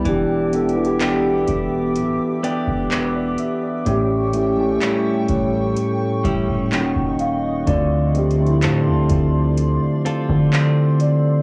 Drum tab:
HH |x-----x-x-x-x-----x-----x-----x-----x-----x-----|x-----x-----x-----x-----x-----x-----x-----x-----|x-----x-x-x-x-----x-----x-----x-----x-----x-----|
CP |------------x-----------------------x-----------|------------x-----------------------x-----------|------------x-----------------------x-----------|
BD |o-----------------o--------------o--------------|------------------o-----------o--o-----o--------|o-----------------o--------------o--------------|